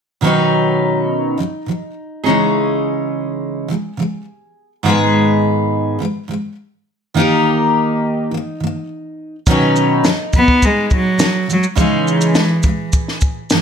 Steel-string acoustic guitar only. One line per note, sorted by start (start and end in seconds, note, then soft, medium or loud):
0.21 1.36 B2 medium
0.21 1.39 D#3 medium
0.21 1.38 F#3 medium
0.21 1.41 C#4 medium
0.21 2.24 D#4 medium
0.21 1.39 B4 medium
1.38 1.61 B2 medium
1.38 1.62 D#3 soft
1.38 1.62 F#3 soft
1.66 1.90 B2 soft
1.66 1.91 D#3 soft
1.66 1.91 F#3 soft
2.24 3.67 C#3 soft
2.24 3.69 E3 soft
2.24 3.71 G#3 soft
2.24 3.70 C#4 medium
2.24 3.71 D#4 soft
2.24 4.72 G#4 medium
3.68 3.92 C#3 soft
3.68 3.93 E3 medium
3.68 3.93 G#3 soft
3.97 4.21 C#3 soft
3.97 4.22 E3 soft
3.97 4.22 G#3 medium
4.83 5.97 G#2 medium
4.83 6.00 D#3 medium
4.83 6.00 G#3 medium
4.83 6.01 B3 medium
4.83 6.01 G#4 medium
4.83 6.01 B4 medium
5.99 6.23 G#2 medium
5.99 6.23 D#3 soft
5.99 6.24 G#3 medium
6.28 6.52 G#2 soft
6.28 6.52 D#3 soft
6.28 6.53 G#3 soft
7.14 8.31 D#3 medium
7.14 8.31 A#3 medium
7.14 9.35 D#4 medium
7.14 8.32 G4 medium
7.18 8.33 A#4 medium
8.31 8.54 D#3 soft
8.31 8.56 A#3 medium
8.60 8.83 D#3 soft
8.60 8.85 A#3 medium
9.46 10.02 B2 medium
9.46 10.05 D#3 medium
9.46 10.05 F#3 medium
9.46 10.07 C#4 medium
9.46 11.07 D#4 medium
9.46 10.05 B4 medium
10.04 10.27 B2 medium
10.04 10.28 D#3 medium
10.04 10.28 F#3 medium
10.33 10.56 B2 soft
10.33 10.57 D#3 soft
10.33 10.57 F#3 soft
11.18 11.42 B2 soft
11.18 11.43 D#3 medium
11.18 11.43 F#3 soft
11.48 11.71 C#3 soft
11.48 11.72 E3 soft
11.48 11.73 G#3 soft
11.75 12.33 C#3 medium
11.75 12.34 E3 medium
11.75 12.37 G#3 medium
11.75 12.35 C#4 medium
11.75 12.37 D#4 medium
11.75 13.38 G#4 medium
12.34 12.58 C#3 soft
12.34 12.58 E3 medium
12.34 12.59 G#3 medium
12.63 12.87 C#3 soft
12.63 12.88 E3 soft
12.63 12.88 G#3 medium
13.51 13.62 C#3 medium
13.51 13.62 E3 medium
13.51 13.62 G#3 medium